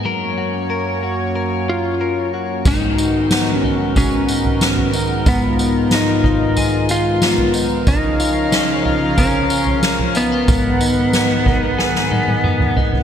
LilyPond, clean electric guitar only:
\new Staff \with { instrumentName = "Clean electric guitar" } { \time 4/4 \key gis \dorian \tempo 4 = 92 <fis ais'>8 fis'8 ais'8 fis'8 ais'4 ais'8 fis'8 | gis,8 dis'8 b8 dis'8 gis'8 dis'8 b8 dis'8 | gis,8 dis'8 b8 dis'8 gis'8 dis'8 b8 dis'8 | r8 eis'8 cis'8 eis'8 ais'8 eis'8 cis'8 dis'16 eis'16 |
gis,8 dis'8 b8 dis'8 gis'8 dis'8 b8 dis'8 | }